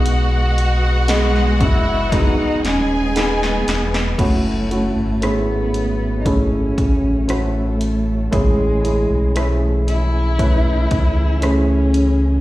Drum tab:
CC |----------------|x---------------|----------------|
HH |x-x-x-x-x-x-x-x-|x-x-x-x-x-x-x-x-|x-x-x-x-x-x-x-x-|
SD |----oo--o-o-oooo|----r-------r---|----r-------r---|
BD |------o-o-------|o-------o-o-----|o-------o-o-----|